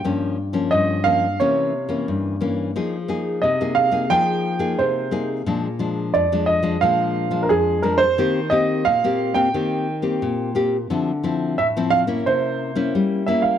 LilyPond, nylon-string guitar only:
\new Staff \with { instrumentName = "Nylon-string guitar" } { \time 4/4 \key c \minor \tempo 4 = 88 << { <f bes des'>8 r16 <f bes des'>8. <f bes des'>16 r16 <e bes des'>8 r16 <e bes des'>8. <e bes des'>8 | <bes ees' aes'>16 r16 <bes ees' aes'>8. <bes ees' aes'>8 <bes ees' aes'>16 <bes ees' aes'>8. <bes ees' aes'>8. <bes ees' aes'>8 | <f aes d'>16 r16 <f aes d'>8. <f aes d'>8 <f aes d'>16 <f aes d'>8. <f aes d'>8. <f aes d'>16 r16 | <bes c' g'>16 r16 <bes c' g'>8 r16 <bes c' g'>8 <bes c' g'>16 <bes c' g'>8 r16 <bes c' g'>8. <bes c' g'>16 r16 |
<f c' e'>16 r16 <f c' e'>8 r16 <f c' e'>8 <bes des' e'>4 <bes des' e'>8. <bes des' e'>8 | } \\ { g,4 g,4 c4 g,4 | f4 c4 f4 c4 | bes,4 f,4 bes,4 f,4 | ees4 bes,4 ees4 bes,4 |
d4 a,4 c4 g4 | } >> }